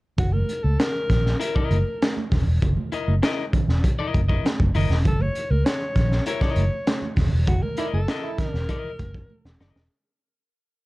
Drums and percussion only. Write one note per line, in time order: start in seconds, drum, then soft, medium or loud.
0.18 kick loud
0.18 closed hi-hat loud
0.18 muted conga soft
0.18 low conga medium
0.34 high conga medium
0.49 closed hi-hat medium
0.49 muted conga soft
0.65 high conga medium
0.80 snare loud
0.80 closed hi-hat medium
0.80 muted conga soft
1.10 kick medium
1.10 snare soft
1.10 closed hi-hat medium
1.10 low conga medium
1.26 snare soft
1.41 closed hi-hat loud
1.41 muted conga soft
1.56 kick medium
1.71 closed hi-hat medium
1.71 muted conga soft
1.71 high conga medium
2.02 snare loud
2.02 closed hi-hat loud
2.02 muted conga soft
2.02 high conga medium
2.17 high conga medium
2.31 kick loud
2.31 snare soft
2.31 open hi-hat medium
2.31 low conga medium
2.62 kick loud
2.62 closed hi-hat loud
2.62 low conga medium
2.77 high conga medium
2.92 closed hi-hat medium
2.92 muted conga soft
3.08 high conga medium
3.23 snare loud
3.23 closed hi-hat loud
3.53 kick medium
3.53 closed hi-hat medium
3.53 muted conga soft
3.53 low conga medium
3.69 snare soft
3.84 kick loud
3.84 closed hi-hat loud
4.14 kick medium
4.14 closed hi-hat medium
4.14 muted conga soft
4.14 high conga medium
4.29 kick medium
4.45 snare loud
4.45 closed hi-hat loud
4.45 muted conga soft
4.45 high conga medium
4.60 kick loud
4.60 high conga medium
4.75 open hi-hat medium
4.75 low conga medium
4.91 snare soft
5.05 kick loud
5.05 closed hi-hat loud
5.05 muted conga soft
5.05 low conga medium
5.20 high conga medium
5.35 closed hi-hat medium
5.51 high conga medium
5.66 snare loud
5.66 closed hi-hat loud
5.96 kick medium
5.96 snare soft
5.96 closed hi-hat medium
5.96 muted conga soft
5.96 low conga medium
6.12 snare soft
6.26 closed hi-hat loud
6.26 muted conga soft
6.41 kick loud
6.41 snare soft
6.56 closed hi-hat medium
6.56 high conga medium
6.87 snare loud
6.87 closed hi-hat loud
6.87 high conga medium
7.02 high conga medium
7.17 kick medium
7.17 snare soft
7.17 open hi-hat medium
7.17 muted conga soft
7.17 low conga medium
7.47 kick loud
7.47 closed hi-hat medium
7.47 muted conga soft
7.47 low conga medium
7.62 high conga medium
7.77 closed hi-hat medium
7.93 high conga medium
8.08 snare loud
8.08 closed hi-hat medium
8.38 kick medium
8.38 snare soft
8.38 closed hi-hat medium
8.38 muted conga soft
8.38 low conga medium
8.55 snare soft
8.69 kick loud
8.69 closed hi-hat loud
8.69 muted conga soft
8.99 kick medium
8.99 closed hi-hat medium
8.99 muted conga soft
8.99 high conga medium
9.14 kick medium
9.30 muted conga soft
9.30 high conga medium
9.45 snare medium
9.45 high conga medium
9.61 snare medium
9.61 muted conga soft
9.61 low conga medium
9.76 snare medium